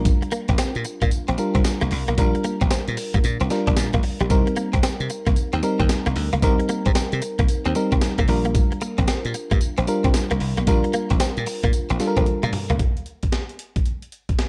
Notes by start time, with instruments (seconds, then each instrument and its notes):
Already playing: slap bass A#1, fm electric piano G3 D4 F4 A#4
0.05 kick, closed hi-hat, tambourine
0.22 muted clean electric guitar stroke, closed hi-hat
0.31 clean electric guitar A#3, closed hi-hat, tambourine
0.48 slap bass A#1, clean electric guitar C4, kick, closed hi-hat
0.58 clean electric guitar C4, snare, closed hi-hat, tambourine
0.75 slap bass A#2, closed hi-hat
0.85 muted clean electric guitar stroke, closed hi-hat, tambourine
1.01 slap bass A#2, clean electric guitar A#3, kick, closed hi-hat
1.11 muted slap bass stroke, closed hi-hat, tambourine
1.28 slap bass A#1, clean electric guitar C4, closed hi-hat
1.38 fm electric piano G3 D4 F4 A#4, muted clean electric guitar stroke, closed hi-hat, tambourine
1.55 slap bass C2, clean electric guitar C4, kick, closed hi-hat
1.64 snare, closed hi-hat, tambourine
1.81 slap bass C2, clean electric guitar A#3, closed hi-hat
1.91 slap bass C2, muted clean electric guitar stroke, open hi-hat
2.08 slap bass B1, clean electric guitar A#3, closed hi-hat
2.18 slap bass A#1, fm electric piano G3 D4 F4 A#4, kick, closed hi-hat, tambourine
2.35 muted clean electric guitar stroke, closed hi-hat
2.44 clean electric guitar A#3, closed hi-hat, tambourine
2.61 slap bass A#1, clean electric guitar C4, kick, closed hi-hat
2.71 clean electric guitar C4, muted slap bass stroke, snare, closed hi-hat, tambourine
2.88 slap bass A#2, closed hi-hat
2.97 muted clean electric guitar stroke, open hi-hat, tambourine
3.14 slap bass G2, clean electric guitar A#3, kick, closed hi-hat
3.24 slap bass A#2, closed hi-hat, tambourine
3.40 slap bass C2, clean electric guitar C4, closed hi-hat
3.50 fm electric piano G3 D4 F4 A#4, muted clean electric guitar stroke, snare, closed hi-hat, tambourine
3.67 slap bass A#1, clean electric guitar D4, kick, closed hi-hat
3.77 slap bass A#2, snare, closed hi-hat, tambourine
3.93 slap bass A#1, clean electric guitar A#3, kick, closed hi-hat
4.03 muted clean electric guitar stroke, open hi-hat
4.20 slap bass A#1, clean electric guitar G3, closed hi-hat
4.30 slap bass C2, fm electric piano G3 C4 D#4 A#4, kick, closed hi-hat, tambourine
4.47 muted clean electric guitar stroke, closed hi-hat
4.56 clean electric guitar A#3, closed hi-hat, tambourine
4.73 slap bass C2, clean electric guitar C4, kick, closed hi-hat
4.83 clean electric guitar C4, snare, closed hi-hat, tambourine
5.00 slap bass C3, closed hi-hat
5.10 muted clean electric guitar stroke, closed hi-hat, tambourine
5.26 slap bass C2, clean electric guitar A#3, kick, closed hi-hat
5.36 muted slap bass stroke, closed hi-hat, tambourine
5.53 slap bass D#2, clean electric guitar C4, closed hi-hat
5.63 fm electric piano G3 C4 D#4 A#4, muted clean electric guitar stroke, closed hi-hat, tambourine
5.80 slap bass D#2, clean electric guitar C4, kick, closed hi-hat
5.89 snare, closed hi-hat, tambourine
6.06 slap bass C2, clean electric guitar A#3, closed hi-hat
6.16 slap bass D2, muted clean electric guitar stroke, open hi-hat
6.33 slap bass C#2, clean electric guitar A#3, closed hi-hat
6.42 slap bass C2, fm electric piano G3 C4 D#4 A#4, kick, closed hi-hat, tambourine
6.59 muted clean electric guitar stroke, closed hi-hat
6.69 clean electric guitar A#3, closed hi-hat, tambourine
6.86 slap bass G2, clean electric guitar C4, kick, closed hi-hat
6.95 clean electric guitar C4, muted slap bass stroke, snare, closed hi-hat, tambourine
7.12 slap bass C3, closed hi-hat
7.22 muted clean electric guitar stroke, closed hi-hat, tambourine
7.39 slap bass C2, clean electric guitar A#3, kick, closed hi-hat
7.48 closed hi-hat, tambourine
7.65 slap bass D#2, clean electric guitar C4, closed hi-hat
7.75 fm electric piano G3 C4 D#4 A#4, muted clean electric guitar stroke, closed hi-hat, tambourine
7.92 slap bass C2, clean electric guitar C4, kick, closed hi-hat
8.01 snare, closed hi-hat, tambourine
8.18 slap bass C3, clean electric guitar A#3, kick, closed hi-hat
8.28 slap bass A#1, fm electric piano G3 D4 F4 A#4, muted clean electric guitar stroke, open hi-hat
8.45 clean electric guitar A#3, closed hi-hat
8.55 kick, closed hi-hat, tambourine
8.72 muted clean electric guitar stroke, closed hi-hat
8.81 clean electric guitar A#3, closed hi-hat, tambourine
8.98 slap bass A#1, clean electric guitar C4, kick, closed hi-hat
9.08 clean electric guitar C4, snare, closed hi-hat, tambourine
9.25 slap bass A#2, closed hi-hat
9.34 muted clean electric guitar stroke, closed hi-hat, tambourine
9.51 slap bass G2, clean electric guitar A#3, kick, closed hi-hat
9.61 muted slap bass stroke, closed hi-hat, tambourine
9.78 slap bass A#1, clean electric guitar C4, closed hi-hat
9.87 fm electric piano G3 D4 F4 A#4, muted clean electric guitar stroke, closed hi-hat, tambourine
10.04 slap bass C2, clean electric guitar C4, kick, closed hi-hat
10.14 snare, closed hi-hat, tambourine
10.31 slap bass C2, clean electric guitar A#3, closed hi-hat
10.40 slap bass C2, muted clean electric guitar stroke, open hi-hat
10.57 slap bass B1, clean electric guitar A#3, closed hi-hat
10.67 slap bass A#1, fm electric piano G3 D4 F4 A#4, kick, closed hi-hat, tambourine
10.84 muted clean electric guitar stroke, closed hi-hat
10.93 clean electric guitar A#3, closed hi-hat, tambourine
11.10 slap bass A#1, clean electric guitar C4, kick, closed hi-hat
11.20 clean electric guitar C4, muted slap bass stroke, snare, closed hi-hat, tambourine
11.37 slap bass A#2, closed hi-hat
11.46 muted clean electric guitar stroke, open hi-hat, tambourine
11.63 slap bass A#2, clean electric guitar A#3, kick, closed hi-hat
11.73 closed hi-hat, tambourine
11.90 slap bass A#1, clean electric guitar C4, closed hi-hat
12.00 fm electric piano G3 D4 F4 A4, muted clean electric guitar stroke, snare, closed hi-hat, tambourine
12.07 fm electric piano A#4
12.17 slap bass A#1, clean electric guitar C4, kick, closed hi-hat
12.26 closed hi-hat, high tom
12.43 slap bass A#2, clean electric guitar A#3, closed hi-hat, mid tom
12.53 muted clean electric guitar stroke, mid tom, open hi-hat
12.70 slap bass C#2, clean electric guitar A#3, closed hi-hat, floor tom
12.79 kick, closed hi-hat
12.97 closed hi-hat
13.06 closed hi-hat
13.23 kick, closed hi-hat
13.32 snare, closed hi-hat
13.49 closed hi-hat
13.59 closed hi-hat
13.76 kick, closed hi-hat
13.86 closed hi-hat
14.02 closed hi-hat
14.12 closed hi-hat
14.29 kick, closed hi-hat
14.39 snare, closed hi-hat